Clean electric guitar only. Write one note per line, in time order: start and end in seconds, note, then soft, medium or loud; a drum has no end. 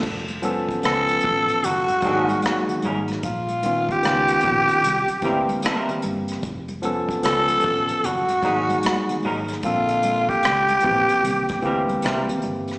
1.65 muted clean electric guitar stroke soft
2.04 2.15 G3 medium
2.04 2.29 C#4 medium
2.04 2.30 D#4 medium
2.04 2.30 A#4 medium
2.15 2.29 G#3 medium
2.85 2.97 G#3 medium
2.85 2.97 C#4 medium
2.85 2.98 D#4 medium
2.85 2.98 A#4 medium
5.24 5.37 G3 medium
5.24 5.37 C4 medium
5.24 5.37 E4 medium
5.24 5.38 A#4 medium
5.64 5.89 G3 medium
5.64 5.90 C4 medium
5.64 5.90 E4 medium
5.64 5.90 A#4 loud
8.05 muted clean electric guitar stroke soft
8.44 8.60 G#3 medium
8.44 8.60 C#4 medium
8.44 8.61 D#4 medium
8.44 8.61 A#4 medium
9.25 9.37 G#3 medium
9.25 9.37 C#4 medium
9.25 9.38 D#4 medium
9.25 9.38 A#4 medium
11.65 11.77 G3 medium
11.65 11.77 C4 medium
11.65 11.78 E4 soft
11.65 11.78 A#4 medium
12.04 12.21 G3 medium
12.04 12.21 C4 medium
12.04 12.21 E4 medium
12.04 12.21 A#4 medium